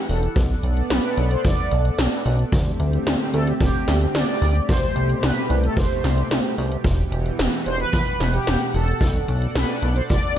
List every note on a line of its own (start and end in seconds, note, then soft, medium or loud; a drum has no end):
0.00 0.34 E3 medium
0.00 0.34 E4 medium
0.00 0.34 G4 medium
0.00 2.49 F#5 medium
0.09 0.29 E1 loud
0.09 0.59 A4 medium
0.09 open hi-hat medium
0.23 closed hi-hat medium
0.36 0.55 B1 loud
0.36 2.50 B3 medium
0.36 2.50 A4 medium
0.36 2.50 D5 medium
0.36 kick loud
0.36 closed hi-hat medium
0.50 closed hi-hat soft
0.63 0.83 B1 medium
0.63 closed hi-hat loud
0.77 closed hi-hat medium
0.90 1.00 B1 medium
0.90 1.28 B4 medium
0.90 snare loud
0.90 closed hi-hat medium
1.04 closed hi-hat soft
1.17 1.37 B1 medium
1.17 closed hi-hat medium
1.31 1.45 C5 loud
1.31 closed hi-hat medium
1.44 1.54 F#1 medium
1.44 2.22 D5 loud
1.44 kick loud
1.44 closed hi-hat medium
1.58 closed hi-hat soft
1.71 1.91 B1 loud
1.71 closed hi-hat loud
1.85 closed hi-hat medium
1.99 2.08 B1 medium
1.99 snare loud
1.99 closed hi-hat medium
2.12 closed hi-hat soft
2.26 2.45 B1 loud
2.26 open hi-hat medium
2.39 closed hi-hat medium
2.52 2.72 D2 loud
2.52 4.67 D3 medium
2.52 4.67 A3 medium
2.52 4.67 C4 medium
2.52 8.97 G4 medium
2.52 kick loud
2.52 closed hi-hat medium
2.66 closed hi-hat soft
2.80 2.99 D2 medium
2.80 closed hi-hat medium
2.93 closed hi-hat medium
3.07 3.16 D2 medium
3.07 snare loud
3.07 closed hi-hat medium
3.20 closed hi-hat soft
3.34 3.53 D2 medium
3.34 3.48 A4 loud
3.34 closed hi-hat medium
3.47 3.53 G4 medium
3.47 closed hi-hat medium
3.60 3.70 D1 medium
3.60 4.16 G4 loud
3.60 kick loud
3.60 closed hi-hat medium
3.74 closed hi-hat soft
3.88 4.07 D2 loud
3.88 snare medium
3.88 closed hi-hat loud
4.01 closed hi-hat medium
4.15 4.24 D2 medium
4.15 4.70 D5 loud
4.15 snare loud
4.15 closed hi-hat medium
4.28 closed hi-hat soft
4.42 4.61 D2 loud
4.42 open hi-hat medium
4.55 closed hi-hat medium
4.69 4.88 C2 loud
4.69 10.39 B2 medium
4.69 6.83 C3 medium
4.69 6.83 A3 medium
4.69 5.24 C5 loud
4.69 kick loud
4.69 closed hi-hat soft
4.82 closed hi-hat soft
4.96 5.15 C2 medium
4.96 closed hi-hat medium
5.09 closed hi-hat medium
5.23 5.32 C2 medium
5.23 5.65 B4 loud
5.23 snare loud
5.23 closed hi-hat medium
5.37 closed hi-hat soft
5.50 5.69 C2 medium
5.50 closed hi-hat medium
5.64 5.77 A4 medium
5.64 closed hi-hat medium
5.77 5.86 G1 medium
5.77 6.54 C5 loud
5.77 kick loud
5.77 closed hi-hat soft
5.91 closed hi-hat soft
6.04 6.23 C2 loud
6.04 snare medium
6.04 closed hi-hat medium
6.18 closed hi-hat medium
6.31 6.41 C2 medium
6.31 snare loud
6.31 closed hi-hat medium
6.45 closed hi-hat soft
6.58 6.77 C2 loud
6.58 open hi-hat medium
6.72 closed hi-hat medium
6.84 7.04 E1 loud
6.84 8.99 E3 medium
6.84 10.39 F#5 medium
6.84 kick loud
6.84 closed hi-hat soft
6.99 closed hi-hat soft
7.12 7.31 E1 medium
7.12 closed hi-hat medium
7.26 closed hi-hat soft
7.39 7.49 E1 medium
7.39 snare loud
7.39 closed hi-hat soft
7.53 closed hi-hat soft
7.66 7.85 E1 medium
7.66 7.79 C5 loud
7.66 closed hi-hat medium
7.80 8.35 B4 loud
7.80 closed hi-hat medium
7.93 8.03 E2 medium
7.93 kick loud
7.93 closed hi-hat soft
8.07 closed hi-hat soft
8.20 8.39 E1 loud
8.20 snare medium
8.20 closed hi-hat medium
8.34 8.76 G4 medium
8.34 closed hi-hat medium
8.47 8.57 E1 medium
8.47 snare loud
8.47 closed hi-hat soft
8.61 closed hi-hat soft
8.74 8.94 E1 loud
8.74 9.25 A4 medium
8.74 open hi-hat medium
8.88 closed hi-hat soft
9.01 9.20 B1 loud
9.01 10.39 A4 medium
9.01 10.39 D5 medium
9.01 kick loud
9.01 closed hi-hat soft
9.15 closed hi-hat soft
9.28 9.48 B1 medium
9.28 closed hi-hat medium
9.42 closed hi-hat soft
9.55 9.65 B1 medium
9.55 9.97 B4 medium
9.55 snare loud
9.55 closed hi-hat soft
9.69 closed hi-hat soft
9.82 10.02 B1 medium
9.82 closed hi-hat medium
9.96 10.02 C5 loud
9.96 closed hi-hat medium
10.09 10.19 F#1 medium
10.09 10.39 D5 loud
10.09 kick loud
10.09 closed hi-hat soft
10.23 closed hi-hat soft